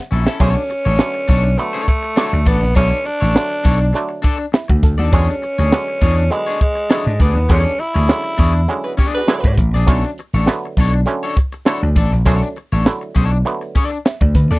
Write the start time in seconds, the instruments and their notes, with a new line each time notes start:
Already playing: clav E5 F#5
0.11 slap bass A#1, clean electric guitar C#4 E4 A4
0.26 clean electric guitar C#4 E4 A4, clav E5, snare
0.40 slap bass B1, clav D3 F#3 A3 C#4, tenor saxophone C#4, clean electric guitar D4 A4 C#5, kick, crash
0.56 muted clean electric guitar stroke
0.70 muted clean electric guitar stroke, closed hi-hat
0.85 slap bass A1, clean electric guitar D4 A4 C#5, closed hi-hat
0.99 clav D3 F#3 A3 C#4, muted clean electric guitar stroke, snare
1.14 muted clean electric guitar stroke, closed hi-hat
1.28 slap bass B1, clean electric guitar D4 A4 C#5, kick, open hi-hat
1.44 muted clean electric guitar stroke, closed hi-hat
1.58 clav D3 F#3 A3 B3, tenor saxophone A3, muted clean electric guitar stroke, closed hi-hat
1.73 clean electric guitar D4 A4 C#5, closed hi-hat
1.88 tenor saxophone A3, muted clean electric guitar stroke, kick, closed hi-hat
2.03 muted clean electric guitar stroke, closed hi-hat
2.16 clav D3 F#3 A3 D4, clean electric guitar D4 A4 C#5, snare
2.32 slap bass D2, muted clean electric guitar stroke, closed hi-hat
2.45 slap bass A1, tenor saxophone B3, clean electric guitar D4 A4 D5, kick, closed hi-hat
2.61 slap bass A#1, muted clean electric guitar stroke, snare, closed hi-hat
2.75 slap bass B1, clav D3 F#3 A3 C#4, tenor saxophone C#4, clean electric guitar D4 A4 C#5, kick, closed hi-hat
2.90 muted clean electric guitar stroke, closed hi-hat
3.05 tenor saxophone D4, muted clean electric guitar stroke, closed hi-hat
3.20 slap bass A1, clean electric guitar D4 A4 C#5, closed hi-hat
3.35 clav D3 F#3 A3 C#5, muted clean electric guitar stroke, snare
3.50 muted clean electric guitar stroke
3.64 slap bass B1, clean electric guitar D4 A4 C#5, kick, open hi-hat
3.79 muted clean electric guitar stroke, closed hi-hat
3.93 clav D3 F#3 A3 D4, muted clean electric guitar stroke, closed hi-hat
4.09 muted clean electric guitar stroke
4.22 clean electric guitar D4 A4 D5, kick, closed hi-hat
4.38 muted clean electric guitar stroke, closed hi-hat
4.52 clav E4, muted clean electric guitar stroke, snare
4.68 slap bass D2, clav F#4, muted clean electric guitar stroke, kick, closed hi-hat
4.83 slap bass D2, clav A4, kick, closed hi-hat
4.98 slap bass D#2, clean electric guitar D4 A4 D5, clav F#4, closed hi-hat
5.12 slap bass E2, clav D3 F#3 G#3 C#4, tenor saxophone C#4, clean electric guitar D4 G#4 C#5, kick, closed hi-hat
5.29 muted clean electric guitar stroke, snare, closed hi-hat
5.42 muted clean electric guitar stroke, closed hi-hat
5.58 slap bass D2, clean electric guitar D4 G#4 C#5, closed hi-hat
5.72 clav D3 F#3 G#3 C#4, snare
5.88 muted clean electric guitar stroke, closed hi-hat
6.01 slap bass E2, clean electric guitar D4 G#4 C#5, kick, open hi-hat
6.17 muted clean electric guitar stroke, closed hi-hat
6.31 clav D3 F#3 G#3 B3, tenor saxophone G#3, muted clean electric guitar stroke, closed hi-hat
6.47 clean electric guitar D4 G#4 C#5, closed hi-hat
6.61 tenor saxophone G#3, muted clean electric guitar stroke, kick, closed hi-hat
6.75 muted clean electric guitar stroke, closed hi-hat
6.89 clav D3 F#3 G#3 E4, clean electric guitar D4 G#4 C#5, snare
7.05 slap bass G#2, muted clean electric guitar stroke, closed hi-hat
7.20 slap bass D2, tenor saxophone B3, clean electric guitar D4 G#4 D5, kick, closed hi-hat
7.35 slap bass D#2, muted clean electric guitar stroke, closed hi-hat
7.49 slap bass E2, clav D3 F#3 G#3 C#4, tenor saxophone C#4, clean electric guitar D4 G#4 C#5, kick, closed hi-hat
7.65 muted clean electric guitar stroke, closed hi-hat
7.79 tenor saxophone E4, muted clean electric guitar stroke, closed hi-hat
7.94 slap bass D2, clean electric guitar D4 G#4 C#5, closed hi-hat
8.08 clav D3 F#3 G#3 C#4, muted clean electric guitar stroke, snare
8.23 muted clean electric guitar stroke, closed hi-hat
8.38 slap bass E2, clean electric guitar D4 G#4 C#5, kick, open hi-hat
8.53 muted clean electric guitar stroke, closed hi-hat
8.68 clav D3 F#3 G#3 C#4, muted clean electric guitar stroke, closed hi-hat
8.84 horn section B3 F#4 G#4 B4, muted clean electric guitar stroke, closed hi-hat
8.97 clean electric guitar D4 G#4 D5, kick, closed hi-hat
9.14 horn section B3 F#4 G#4 B4, muted clean electric guitar stroke, closed hi-hat
9.27 clav D3 F#3 G#3 E4, muted clean electric guitar stroke, snare
9.44 slap bass G#2, muted clean electric guitar stroke, kick, closed hi-hat
9.58 slap bass A1, kick, closed hi-hat
9.74 slap bass A#1, clean electric guitar D4 G#4 D5, snare, closed hi-hat
9.87 slap bass B1, clav D3 F#3 A3 C#4, clean electric guitar D4 A4 C#5, kick, closed hi-hat
10.03 muted clean electric guitar stroke, snare, closed hi-hat
10.18 muted clean electric guitar stroke, closed hi-hat
10.33 slap bass A1, clean electric guitar D4 A4 C#5, closed hi-hat
10.46 clav D3 F#3 A3 B3, muted clean electric guitar stroke, snare
10.63 muted clean electric guitar stroke, closed hi-hat
10.77 slap bass B1, clean electric guitar D4 A4 C#5, kick, open hi-hat
10.93 muted clean electric guitar stroke, closed hi-hat
11.06 clav D3 F#3 A3 C#4, muted clean electric guitar stroke, closed hi-hat
11.23 clean electric guitar D4 A4 C#5
11.37 muted clean electric guitar stroke, kick, closed hi-hat
11.52 muted clean electric guitar stroke, closed hi-hat
11.65 clav D3 F#3 A3 E4, clean electric guitar D4 A4 C#5, snare
11.82 slap bass D2, muted clean electric guitar stroke, closed hi-hat
11.96 slap bass A1, clean electric guitar D4 A4 D5, kick, closed hi-hat
12.12 slap bass A#1, muted clean electric guitar stroke, snare, closed hi-hat
12.25 slap bass B1, clav D3 F#3 A3 C#4, clean electric guitar D4 A4 C#5, kick, closed hi-hat
12.42 muted clean electric guitar stroke, snare, closed hi-hat
12.56 muted clean electric guitar stroke, closed hi-hat
12.72 slap bass A1, clean electric guitar D4 A4 C#5, closed hi-hat
12.85 clav D3 F#3 A3 E4, muted clean electric guitar stroke, snare
13.01 muted clean electric guitar stroke, closed hi-hat
13.15 slap bass B1, clean electric guitar D4 A4 C#5, kick, open hi-hat
13.31 muted clean electric guitar stroke, closed hi-hat
13.45 clav D3 F#3 A3 B3, muted clean electric guitar stroke, closed hi-hat
13.61 muted clean electric guitar stroke, closed hi-hat
13.75 clean electric guitar D4 A4 D5, kick, closed hi-hat
13.91 muted clean electric guitar stroke, closed hi-hat
14.05 clav E5, muted clean electric guitar stroke, snare
14.21 slap bass D2, clav D5, muted clean electric guitar stroke, kick, closed hi-hat
14.35 slap bass D2, clav B4, kick, closed hi-hat
14.51 slap bass D#2, clean electric guitar D4 A4 D5, clav A4, snare, closed hi-hat